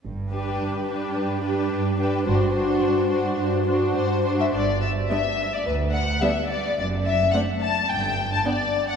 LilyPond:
<<
  \new Staff \with { instrumentName = "Violin section" } { \time 4/4 \key g \major \tempo 4 = 107 << { r1 | r2. c''8. e''16 | d''8 e''8 e''8. d''16 b'8 fis''8 e''8 d''8 | d''8 e''8 fis''8 a''8 g''8. a''16 d''8. fis''16 | } \\ { r8 b'4 b'4 b'4 b'8 | c''8 c''4 c''4 c''8 r8 c''8 | r1 | r1 | } >> }
  \new Staff \with { instrumentName = "Violin section" } { \time 4/4 \key g \major r8 g'4 g'4 g'4 g'8 | fis'8 fis'4 fis'4 fis'4 fis'8 | r4 <d' d''>4 r4 <d' d''>4 | r4 <d' d''>4 r4 <d' d''>4 | }
  \new Staff \with { instrumentName = "Viola section" } { \time 4/4 \key g \major r8 d'4 d'4 d'4 d'8 | d'8 d'4 d'4 d'4 d'8 | r4 <g b>4 r4 <g b>4 | r4 <a c'>4 r4 b4 | }
  \new Staff \with { instrumentName = "Cello section" } { \clef bass \time 4/4 \key g \major g,4 g,4 g,4 g,4 | g,4 g,4 g,4 g,4 | g,4 r4 d,4 r4 | fis,4 r4 g,4 r4 | }
  \new Staff \with { instrumentName = "Double bass section" } { \clef bass \time 4/4 \key g \major g,,4 r2. | g,,4 r2. | g,,4 r4 d,4 r4 | fis,,4 r4 g,,4 r4 | }
>>